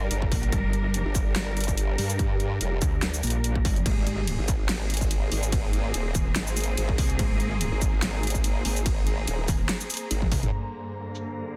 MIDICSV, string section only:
0, 0, Header, 1, 2, 480
1, 0, Start_track
1, 0, Tempo, 416667
1, 605, Time_signature, 4, 2, 24, 8
1, 13323, End_track
2, 0, Start_track
2, 0, Title_t, "String section"
2, 0, Program_c, 0, 48
2, 0, Note_on_c, 0, 55, 84
2, 0, Note_on_c, 0, 62, 74
2, 0, Note_on_c, 0, 70, 91
2, 4398, Note_off_c, 0, 55, 0
2, 4398, Note_off_c, 0, 62, 0
2, 4399, Note_off_c, 0, 70, 0
2, 4443, Note_on_c, 0, 58, 82
2, 4443, Note_on_c, 0, 60, 78
2, 4443, Note_on_c, 0, 68, 90
2, 12078, Note_off_c, 0, 58, 0
2, 12078, Note_off_c, 0, 60, 0
2, 12078, Note_off_c, 0, 68, 0
2, 12124, Note_on_c, 0, 58, 78
2, 12125, Note_on_c, 0, 43, 71
2, 12125, Note_on_c, 0, 50, 64
2, 13323, Note_off_c, 0, 43, 0
2, 13323, Note_off_c, 0, 50, 0
2, 13323, Note_off_c, 0, 58, 0
2, 13323, End_track
0, 0, End_of_file